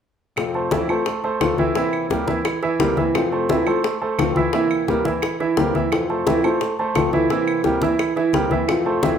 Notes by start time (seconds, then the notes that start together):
0.36 F2 C3 A3 C4 F4, high bongo, high conga, claves
0.54 A3 A4 C5, high conga
0.71 F2 C3 E3 A3 C4 E4 F4 E5, high bongo, high conga
0.88 E3 A3 C4 F4 A4 C5, high conga, claves
1.06 muted nylon-string guitar stroke, high bongo, high conga
1.24 A3 A4 C5, high conga
1.40 F2 C3 E3 A3 C4 F4, high bongo, low bongo, high conga, claves
1.57 E3 A3 C4 E4 F4 E5, high conga
1.74 C3 E3 A#3 C4 E4 E5, high bongo, high conga
1.93 high conga, claves
2.10 C3 E3 G3 A#3 C4 E4 G4 A#4, high bongo, high conga
2.27 E3 A#3 C4 E4 E5, high bongo, high conga
2.44 muted nylon-string guitar stroke, high bongo, high conga, claves
2.63 E3 E4 E5, high bongo, high conga
2.79 C3 E3 G3 A#3 C4 E4 G4 A#4, high bongo, low bongo, high conga
2.97 E3 A#3 C4 E4 E5, high bongo, high conga
3.14 F2 C3 A3 C4 F4, high bongo, high conga, claves
3.32 A3 A4 C5, high conga
3.49 F2 C3 E3 A3 C4 E4 F4 E5, high bongo, high conga
3.66 E3 A3 C4 F4 A4 C5, high conga, claves
3.83 muted nylon-string guitar stroke, high bongo, high conga
4.01 A3 A4 C5, high conga
4.18 F2 C3 E3 A3 C4 F4, high bongo, low bongo, high conga, claves
4.35 E3 A3 C4 E4 F4 E5, high conga
4.53 C3 E3 A#3 C4 E4 E5, high bongo
4.71 high conga, claves
4.87 C3 E3 G3 A#3 C4 E4 G4 A#4, high bongo, high conga
5.05 E3 A#3 C4 E4 E5, high bongo, high conga
5.22 muted nylon-string guitar stroke, high bongo, high conga, claves
5.40 E3 E4 E5, high bongo, high conga
5.57 C3 E3 G3 A#3 C4 E4 G4 A#4, high bongo, low bongo, high conga
5.74 E3 A#3 C4 E4 E5, high bongo, high conga
5.91 F2 C3 A3 C4 F4, high bongo, high conga, claves
6.10 A3 A4 C5, high conga
6.26 F2 C3 E3 A3 C4 E4 F4 E5, high bongo, high conga
6.43 E3 A3 C4 F4 A4 C5, high conga, claves
6.60 muted nylon-string guitar stroke, high bongo, high conga
6.79 A3 A4 C5, high conga
6.94 F2 C3 E3 A3 C4 F4, high bongo, low bongo, high conga, claves
7.12 E3 A3 C4 E4 F4 E5, high conga
7.29 C3 E3 A#3 C4 E4 E5, high bongo
7.48 high conga, claves
7.63 C3 E3 G3 A#3 C4 E4 G4 A#4, high bongo, high conga
7.80 E3 A#3 C4 E4 E5, high bongo, high conga
7.98 muted nylon-string guitar stroke, high bongo, high conga, claves
8.16 E3 E4 E5, high bongo, high conga
8.33 C3 E3 G3 A#3 C4 E4 G4 A#4, high bongo, low bongo, high conga
8.50 E3 A#3 C4 E4 E5, high bongo, high conga
8.67 F2 C3 A3 C4 F4, high bongo, high conga, claves
8.86 A3 A4 C5, high conga
9.02 F2 C3 E3 A3 C4 E4 F4 E5, high bongo, high conga